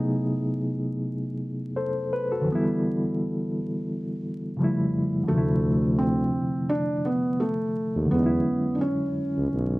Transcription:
Already playing: reed electric piano C3 F#3 A3 B3 D#4 E4 G#4
1.76 reed electric piano A4 C5
2.13 reed electric piano B4
2.32 reed electric piano F#4 A4
2.41 reed electric piano D3 E3
2.48 reed electric piano F3 B3
2.55 reed electric piano G3 E4
4.57 reed electric piano C#3 F3 G3
4.62 reed electric piano A3 E4
5.24 reed electric piano D3 F3
5.28 tuba D2, felt piano A3, reed electric piano A3
5.34 reed electric piano C3 E4
5.99 felt piano C4
6.69 felt piano D4
7.05 felt piano B3
7.40 felt piano A3
7.96 tuba D#2
8.06 reed electric piano D3 F#3
8.11 tuba E2, reed electric piano G#3, felt piano B3
8.16 reed electric piano C#4 D#4
8.26 reed electric piano E4
8.75 felt piano D4
8.81 felt piano C#4
9.37 tuba C#2
9.53 tuba B1

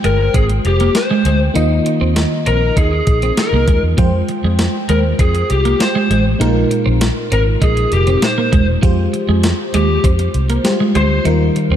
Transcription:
Already playing: fm electric piano G#3 F4 C5 G5
0.04 fingered electric bass G1, clean electric guitar G#3, lead electric guitar A#4, closed hi-hat
0.34 fingered electric bass G#1, clean electric guitar C4, lead electric guitar G#4, kick, closed hi-hat
0.49 muted clean electric guitar stroke, closed hi-hat
0.65 fingered electric bass F1, lead electric guitar G4, closed hi-hat
0.80 clean electric guitar A#3, closed hi-hat
0.95 lead electric guitar C5, muted clean electric guitar stroke, snare, closed hi-hat
1.11 clean electric guitar G#3
1.25 fingered electric bass D2, clean electric guitar G#3, closed hi-hat
1.54 fingered electric bass D#2, fm electric piano D#3 A#3 D#4 F4 D#5, clean electric guitar D#4, closed hi-hat
1.86 muted clean electric guitar stroke, closed hi-hat
2.01 fingered electric bass D#2, clean electric guitar C4
2.16 snare, closed hi-hat
2.46 fingered electric bass A#1, clean electric guitar C4, lead electric guitar A#4, closed hi-hat
2.77 fingered electric bass D#2, clean electric guitar D#4, lead electric guitar G#4, kick, closed hi-hat
2.93 muted clean electric guitar stroke
3.07 fingered electric bass A#1, kick, closed hi-hat
3.22 clean electric guitar C4, closed hi-hat
3.37 lead electric guitar A#4, muted clean electric guitar stroke, snare, closed hi-hat
3.53 fingered electric bass C2, clean electric guitar A#3
3.68 fingered electric bass D#2, clean electric guitar G#3, kick, closed hi-hat
3.83 fingered electric bass E2
3.97 fingered electric bass F2, clean electric guitar F3, fm electric piano G#3 F4 C5 G5, kick, closed hi-hat
4.29 muted clean electric guitar stroke, closed hi-hat
4.44 fingered electric bass F2, clean electric guitar G#3
4.59 snare, closed hi-hat
4.89 fingered electric bass D#2, clean electric guitar G#3, lead electric guitar A#4, closed hi-hat
5.19 fingered electric bass F2, clean electric guitar C4, lead electric guitar G#4, kick, closed hi-hat
5.35 muted clean electric guitar stroke, closed hi-hat
5.50 fingered electric bass C2, lead electric guitar G4, closed hi-hat
5.65 clean electric guitar A#3, closed hi-hat
5.80 fm electric piano G#3 F4 G4 C5, lead electric guitar C5, muted clean electric guitar stroke, snare, closed hi-hat
5.95 clean electric guitar G#3
6.10 fingered electric bass A1, clean electric guitar G#3, closed hi-hat
6.39 fingered electric bass A#1, fm electric piano A#2 G#3 D#4 F4 A#4, clean electric guitar A#3, closed hi-hat
6.71 muted clean electric guitar stroke, closed hi-hat
6.86 fingered electric bass A#1, clean electric guitar C4
7.01 snare, closed hi-hat
7.32 fingered electric bass G#1, clean electric guitar C4, lead electric guitar A#4, closed hi-hat
7.62 fingered electric bass A#1, clean electric guitar D#4, lead electric guitar G#4, kick, closed hi-hat
7.77 muted clean electric guitar stroke, closed hi-hat
7.92 fingered electric bass F1, lead electric guitar G4, closed hi-hat
8.07 clean electric guitar C4, closed hi-hat
8.22 lead electric guitar C5, muted clean electric guitar stroke, snare, closed hi-hat
8.38 clean electric guitar A#3
8.52 fingered electric bass E1, clean electric guitar G#3, kick, closed hi-hat
8.82 fingered electric bass F2, clean electric guitar F3, fm electric piano G#3 F4 G4 C5, kick, closed hi-hat
9.13 muted clean electric guitar stroke, closed hi-hat
9.29 fingered electric bass F2, clean electric guitar G#3
9.43 snare, closed hi-hat
9.74 fingered electric bass D#2, clean electric guitar G#3, lead electric guitar G4, closed hi-hat
10.04 fingered electric bass F2, clean electric guitar C4, kick, closed hi-hat
10.19 muted clean electric guitar stroke, closed hi-hat
10.34 fingered electric bass C2, closed hi-hat
10.50 clean electric guitar A#3, closed hi-hat
10.64 fm electric piano G3 F4 G4 C5, muted clean electric guitar stroke, snare, closed hi-hat
10.71 fm electric piano G#3
10.80 clean electric guitar G#3
10.95 fingered electric bass D2, clean electric guitar G#3, lead electric guitar C5, closed hi-hat
11.24 fingered electric bass D#2, fm electric piano D#3 G3 D#4 F4 A#4, clean electric guitar D#4, closed hi-hat
11.56 muted clean electric guitar stroke, closed hi-hat
11.71 fingered electric bass D#2, clean electric guitar C4

